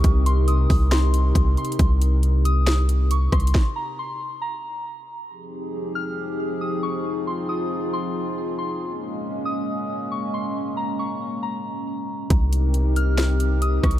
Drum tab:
HH |x--x--x--o--x--x--x--xxx|x--x--x--x--x--x--x--xxx|------------------------|------------------------|
SD |------------o-----------|------------o--------r--|o-----------------------|------------------------|
BD |o--------o--------o-----|o--------------------o--|o-----------------------|------------------------|

HH |------------------------|------------------------|------------------------|x--x--x--x--x--x--x--xx-|
SD |------------------------|------------------------|------------------------|------------o--------r--|
BD |------------------------|------------------------|------------------------|o--------------------o--|